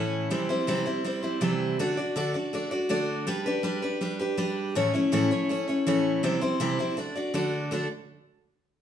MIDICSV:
0, 0, Header, 1, 2, 480
1, 0, Start_track
1, 0, Key_signature, 2, "major"
1, 0, Tempo, 370142
1, 407, Time_signature, 4, 2, 24, 8
1, 11436, End_track
2, 0, Start_track
2, 0, Title_t, "Steel-string acoustic guitar"
2, 0, Program_c, 0, 25
2, 0, Note_on_c, 0, 45, 84
2, 0, Note_on_c, 0, 52, 79
2, 0, Note_on_c, 0, 57, 70
2, 0, Note_on_c, 0, 61, 78
2, 0, Note_on_c, 0, 64, 98
2, 0, Note_on_c, 0, 73, 84
2, 385, Note_off_c, 0, 52, 0
2, 389, Note_off_c, 0, 64, 0
2, 390, Note_off_c, 0, 45, 0
2, 395, Note_on_c, 0, 48, 71
2, 396, Note_off_c, 0, 57, 0
2, 400, Note_off_c, 0, 61, 0
2, 400, Note_on_c, 0, 52, 81
2, 401, Note_on_c, 0, 55, 83
2, 404, Note_on_c, 0, 64, 76
2, 405, Note_off_c, 0, 73, 0
2, 405, Note_on_c, 0, 60, 83
2, 414, Note_on_c, 0, 72, 85
2, 620, Note_off_c, 0, 72, 0
2, 635, Note_off_c, 0, 64, 0
2, 635, Note_on_c, 0, 72, 67
2, 640, Note_off_c, 0, 60, 0
2, 641, Note_off_c, 0, 48, 0
2, 643, Note_off_c, 0, 52, 0
2, 644, Note_off_c, 0, 55, 0
2, 650, Note_on_c, 0, 64, 64
2, 656, Note_on_c, 0, 60, 55
2, 662, Note_on_c, 0, 55, 51
2, 868, Note_off_c, 0, 55, 0
2, 872, Note_on_c, 0, 48, 81
2, 874, Note_off_c, 0, 60, 0
2, 874, Note_off_c, 0, 64, 0
2, 878, Note_off_c, 0, 72, 0
2, 883, Note_on_c, 0, 55, 95
2, 884, Note_on_c, 0, 52, 80
2, 889, Note_on_c, 0, 60, 86
2, 889, Note_on_c, 0, 64, 94
2, 894, Note_on_c, 0, 72, 93
2, 1096, Note_off_c, 0, 72, 0
2, 1107, Note_off_c, 0, 64, 0
2, 1111, Note_on_c, 0, 72, 64
2, 1115, Note_off_c, 0, 60, 0
2, 1119, Note_off_c, 0, 48, 0
2, 1119, Note_off_c, 0, 55, 0
2, 1123, Note_on_c, 0, 64, 59
2, 1125, Note_off_c, 0, 52, 0
2, 1130, Note_on_c, 0, 60, 49
2, 1135, Note_on_c, 0, 55, 48
2, 1338, Note_off_c, 0, 55, 0
2, 1348, Note_off_c, 0, 60, 0
2, 1354, Note_on_c, 0, 55, 69
2, 1356, Note_off_c, 0, 64, 0
2, 1359, Note_off_c, 0, 72, 0
2, 1363, Note_on_c, 0, 60, 64
2, 1372, Note_on_c, 0, 64, 65
2, 1379, Note_on_c, 0, 72, 67
2, 1575, Note_off_c, 0, 72, 0
2, 1587, Note_off_c, 0, 64, 0
2, 1591, Note_on_c, 0, 72, 55
2, 1592, Note_off_c, 0, 60, 0
2, 1596, Note_off_c, 0, 55, 0
2, 1603, Note_on_c, 0, 64, 62
2, 1607, Note_on_c, 0, 60, 51
2, 1612, Note_on_c, 0, 55, 49
2, 1815, Note_off_c, 0, 55, 0
2, 1822, Note_off_c, 0, 60, 0
2, 1824, Note_off_c, 0, 72, 0
2, 1826, Note_off_c, 0, 64, 0
2, 1826, Note_on_c, 0, 48, 79
2, 1830, Note_on_c, 0, 55, 84
2, 1834, Note_on_c, 0, 52, 85
2, 1838, Note_on_c, 0, 60, 82
2, 1839, Note_on_c, 0, 72, 80
2, 1841, Note_on_c, 0, 64, 89
2, 2315, Note_off_c, 0, 48, 0
2, 2318, Note_off_c, 0, 52, 0
2, 2318, Note_off_c, 0, 55, 0
2, 2321, Note_off_c, 0, 60, 0
2, 2322, Note_off_c, 0, 72, 0
2, 2323, Note_off_c, 0, 64, 0
2, 2324, Note_on_c, 0, 50, 71
2, 2330, Note_on_c, 0, 57, 89
2, 2333, Note_on_c, 0, 62, 90
2, 2334, Note_on_c, 0, 66, 81
2, 2340, Note_on_c, 0, 74, 89
2, 2543, Note_off_c, 0, 74, 0
2, 2559, Note_off_c, 0, 66, 0
2, 2559, Note_on_c, 0, 74, 73
2, 2564, Note_off_c, 0, 50, 0
2, 2567, Note_off_c, 0, 57, 0
2, 2569, Note_off_c, 0, 62, 0
2, 2574, Note_on_c, 0, 66, 57
2, 2583, Note_on_c, 0, 62, 51
2, 2792, Note_off_c, 0, 62, 0
2, 2797, Note_on_c, 0, 50, 81
2, 2799, Note_off_c, 0, 66, 0
2, 2802, Note_off_c, 0, 74, 0
2, 2807, Note_on_c, 0, 57, 75
2, 2808, Note_on_c, 0, 62, 82
2, 2815, Note_on_c, 0, 66, 93
2, 2818, Note_on_c, 0, 74, 96
2, 3020, Note_off_c, 0, 74, 0
2, 3034, Note_off_c, 0, 66, 0
2, 3035, Note_on_c, 0, 74, 62
2, 3041, Note_off_c, 0, 50, 0
2, 3046, Note_off_c, 0, 57, 0
2, 3046, Note_off_c, 0, 62, 0
2, 3050, Note_on_c, 0, 66, 54
2, 3063, Note_on_c, 0, 62, 47
2, 3274, Note_off_c, 0, 62, 0
2, 3280, Note_off_c, 0, 74, 0
2, 3280, Note_on_c, 0, 57, 59
2, 3282, Note_off_c, 0, 66, 0
2, 3290, Note_on_c, 0, 62, 62
2, 3298, Note_on_c, 0, 66, 62
2, 3303, Note_on_c, 0, 74, 65
2, 3499, Note_off_c, 0, 74, 0
2, 3512, Note_off_c, 0, 66, 0
2, 3515, Note_on_c, 0, 74, 66
2, 3522, Note_off_c, 0, 57, 0
2, 3527, Note_off_c, 0, 62, 0
2, 3527, Note_on_c, 0, 66, 62
2, 3540, Note_on_c, 0, 62, 46
2, 3745, Note_off_c, 0, 62, 0
2, 3749, Note_off_c, 0, 66, 0
2, 3749, Note_on_c, 0, 50, 72
2, 3753, Note_off_c, 0, 74, 0
2, 3755, Note_on_c, 0, 57, 79
2, 3761, Note_on_c, 0, 62, 82
2, 3765, Note_on_c, 0, 66, 84
2, 3768, Note_on_c, 0, 74, 86
2, 4230, Note_off_c, 0, 62, 0
2, 4232, Note_off_c, 0, 57, 0
2, 4237, Note_off_c, 0, 50, 0
2, 4237, Note_on_c, 0, 55, 88
2, 4241, Note_off_c, 0, 66, 0
2, 4246, Note_off_c, 0, 74, 0
2, 4246, Note_on_c, 0, 62, 79
2, 4246, Note_on_c, 0, 67, 89
2, 4256, Note_on_c, 0, 71, 96
2, 4470, Note_off_c, 0, 71, 0
2, 4480, Note_off_c, 0, 55, 0
2, 4483, Note_off_c, 0, 67, 0
2, 4485, Note_off_c, 0, 62, 0
2, 4486, Note_on_c, 0, 71, 66
2, 4498, Note_on_c, 0, 67, 57
2, 4504, Note_on_c, 0, 62, 58
2, 4705, Note_off_c, 0, 62, 0
2, 4707, Note_off_c, 0, 67, 0
2, 4708, Note_on_c, 0, 55, 79
2, 4710, Note_off_c, 0, 71, 0
2, 4720, Note_on_c, 0, 62, 85
2, 4723, Note_on_c, 0, 67, 82
2, 4725, Note_on_c, 0, 71, 91
2, 4941, Note_off_c, 0, 71, 0
2, 4950, Note_off_c, 0, 67, 0
2, 4956, Note_off_c, 0, 55, 0
2, 4957, Note_on_c, 0, 71, 64
2, 4962, Note_off_c, 0, 62, 0
2, 4966, Note_on_c, 0, 67, 51
2, 4981, Note_on_c, 0, 62, 51
2, 5189, Note_off_c, 0, 62, 0
2, 5198, Note_on_c, 0, 55, 67
2, 5201, Note_off_c, 0, 67, 0
2, 5201, Note_off_c, 0, 71, 0
2, 5205, Note_on_c, 0, 62, 69
2, 5217, Note_on_c, 0, 67, 66
2, 5221, Note_on_c, 0, 71, 74
2, 5423, Note_off_c, 0, 71, 0
2, 5438, Note_off_c, 0, 67, 0
2, 5439, Note_on_c, 0, 71, 65
2, 5441, Note_off_c, 0, 55, 0
2, 5444, Note_off_c, 0, 62, 0
2, 5453, Note_on_c, 0, 67, 61
2, 5465, Note_on_c, 0, 62, 52
2, 5662, Note_off_c, 0, 62, 0
2, 5666, Note_off_c, 0, 67, 0
2, 5673, Note_off_c, 0, 71, 0
2, 5674, Note_on_c, 0, 55, 85
2, 5678, Note_on_c, 0, 62, 71
2, 5682, Note_on_c, 0, 67, 91
2, 5688, Note_on_c, 0, 71, 86
2, 6159, Note_off_c, 0, 55, 0
2, 6161, Note_off_c, 0, 62, 0
2, 6163, Note_off_c, 0, 67, 0
2, 6164, Note_on_c, 0, 45, 79
2, 6166, Note_off_c, 0, 71, 0
2, 6172, Note_on_c, 0, 52, 87
2, 6174, Note_on_c, 0, 57, 91
2, 6178, Note_on_c, 0, 61, 80
2, 6180, Note_on_c, 0, 73, 100
2, 6182, Note_on_c, 0, 64, 78
2, 6385, Note_off_c, 0, 73, 0
2, 6395, Note_off_c, 0, 64, 0
2, 6401, Note_on_c, 0, 73, 59
2, 6404, Note_off_c, 0, 45, 0
2, 6405, Note_off_c, 0, 61, 0
2, 6408, Note_off_c, 0, 52, 0
2, 6409, Note_off_c, 0, 57, 0
2, 6411, Note_on_c, 0, 64, 64
2, 6420, Note_on_c, 0, 61, 58
2, 6426, Note_on_c, 0, 57, 56
2, 6634, Note_off_c, 0, 57, 0
2, 6637, Note_off_c, 0, 61, 0
2, 6637, Note_off_c, 0, 64, 0
2, 6638, Note_on_c, 0, 45, 83
2, 6642, Note_off_c, 0, 73, 0
2, 6644, Note_on_c, 0, 52, 93
2, 6649, Note_on_c, 0, 57, 86
2, 6652, Note_on_c, 0, 64, 102
2, 6653, Note_on_c, 0, 61, 97
2, 6659, Note_on_c, 0, 73, 88
2, 6870, Note_off_c, 0, 73, 0
2, 6881, Note_off_c, 0, 45, 0
2, 6881, Note_off_c, 0, 64, 0
2, 6884, Note_off_c, 0, 52, 0
2, 6886, Note_on_c, 0, 73, 66
2, 6887, Note_off_c, 0, 57, 0
2, 6889, Note_off_c, 0, 61, 0
2, 6896, Note_on_c, 0, 64, 52
2, 6905, Note_on_c, 0, 61, 53
2, 6907, Note_on_c, 0, 57, 47
2, 7108, Note_off_c, 0, 57, 0
2, 7118, Note_off_c, 0, 61, 0
2, 7123, Note_on_c, 0, 57, 59
2, 7125, Note_off_c, 0, 73, 0
2, 7126, Note_off_c, 0, 64, 0
2, 7134, Note_on_c, 0, 61, 60
2, 7142, Note_on_c, 0, 64, 67
2, 7150, Note_on_c, 0, 73, 66
2, 7346, Note_off_c, 0, 73, 0
2, 7361, Note_off_c, 0, 64, 0
2, 7362, Note_on_c, 0, 73, 57
2, 7364, Note_off_c, 0, 57, 0
2, 7369, Note_off_c, 0, 61, 0
2, 7377, Note_on_c, 0, 64, 53
2, 7385, Note_on_c, 0, 61, 56
2, 7389, Note_on_c, 0, 57, 47
2, 7599, Note_off_c, 0, 57, 0
2, 7601, Note_off_c, 0, 61, 0
2, 7603, Note_off_c, 0, 73, 0
2, 7606, Note_off_c, 0, 64, 0
2, 7607, Note_on_c, 0, 52, 86
2, 7608, Note_on_c, 0, 45, 78
2, 7615, Note_on_c, 0, 57, 88
2, 7617, Note_on_c, 0, 61, 87
2, 7622, Note_on_c, 0, 64, 88
2, 7624, Note_on_c, 0, 73, 96
2, 8066, Note_off_c, 0, 52, 0
2, 8073, Note_off_c, 0, 45, 0
2, 8074, Note_off_c, 0, 64, 0
2, 8079, Note_on_c, 0, 48, 86
2, 8082, Note_on_c, 0, 52, 82
2, 8083, Note_off_c, 0, 61, 0
2, 8084, Note_off_c, 0, 57, 0
2, 8089, Note_on_c, 0, 55, 88
2, 8089, Note_on_c, 0, 60, 87
2, 8090, Note_on_c, 0, 64, 81
2, 8091, Note_off_c, 0, 73, 0
2, 8096, Note_on_c, 0, 72, 81
2, 8302, Note_off_c, 0, 72, 0
2, 8311, Note_off_c, 0, 64, 0
2, 8317, Note_off_c, 0, 60, 0
2, 8317, Note_on_c, 0, 72, 66
2, 8322, Note_off_c, 0, 48, 0
2, 8323, Note_off_c, 0, 52, 0
2, 8327, Note_off_c, 0, 55, 0
2, 8327, Note_on_c, 0, 64, 68
2, 8333, Note_on_c, 0, 60, 60
2, 8344, Note_on_c, 0, 55, 49
2, 8549, Note_off_c, 0, 55, 0
2, 8551, Note_off_c, 0, 60, 0
2, 8554, Note_off_c, 0, 64, 0
2, 8557, Note_on_c, 0, 48, 98
2, 8561, Note_off_c, 0, 72, 0
2, 8564, Note_on_c, 0, 55, 86
2, 8566, Note_on_c, 0, 52, 89
2, 8567, Note_on_c, 0, 60, 79
2, 8569, Note_on_c, 0, 64, 106
2, 8575, Note_on_c, 0, 72, 94
2, 8787, Note_off_c, 0, 72, 0
2, 8799, Note_off_c, 0, 64, 0
2, 8801, Note_off_c, 0, 48, 0
2, 8802, Note_on_c, 0, 72, 60
2, 8804, Note_off_c, 0, 55, 0
2, 8805, Note_off_c, 0, 52, 0
2, 8806, Note_off_c, 0, 60, 0
2, 8815, Note_on_c, 0, 64, 61
2, 8822, Note_on_c, 0, 60, 51
2, 8827, Note_on_c, 0, 55, 51
2, 9033, Note_off_c, 0, 55, 0
2, 9038, Note_on_c, 0, 57, 61
2, 9042, Note_off_c, 0, 60, 0
2, 9043, Note_off_c, 0, 72, 0
2, 9047, Note_on_c, 0, 62, 64
2, 9050, Note_off_c, 0, 64, 0
2, 9057, Note_on_c, 0, 66, 62
2, 9061, Note_on_c, 0, 74, 78
2, 9263, Note_off_c, 0, 74, 0
2, 9276, Note_off_c, 0, 66, 0
2, 9278, Note_on_c, 0, 74, 61
2, 9281, Note_off_c, 0, 57, 0
2, 9286, Note_off_c, 0, 62, 0
2, 9292, Note_on_c, 0, 66, 55
2, 9303, Note_on_c, 0, 62, 49
2, 9508, Note_off_c, 0, 62, 0
2, 9514, Note_on_c, 0, 50, 82
2, 9517, Note_off_c, 0, 66, 0
2, 9517, Note_off_c, 0, 74, 0
2, 9518, Note_on_c, 0, 57, 85
2, 9523, Note_on_c, 0, 62, 90
2, 9532, Note_on_c, 0, 74, 82
2, 9533, Note_on_c, 0, 66, 86
2, 9983, Note_off_c, 0, 50, 0
2, 9994, Note_off_c, 0, 57, 0
2, 9999, Note_on_c, 0, 50, 80
2, 10000, Note_off_c, 0, 62, 0
2, 10009, Note_off_c, 0, 66, 0
2, 10009, Note_off_c, 0, 74, 0
2, 10010, Note_on_c, 0, 57, 76
2, 10015, Note_on_c, 0, 62, 80
2, 10026, Note_on_c, 0, 66, 78
2, 10033, Note_on_c, 0, 74, 86
2, 10194, Note_off_c, 0, 50, 0
2, 10199, Note_off_c, 0, 57, 0
2, 10202, Note_off_c, 0, 62, 0
2, 10207, Note_off_c, 0, 66, 0
2, 10211, Note_off_c, 0, 74, 0
2, 11436, End_track
0, 0, End_of_file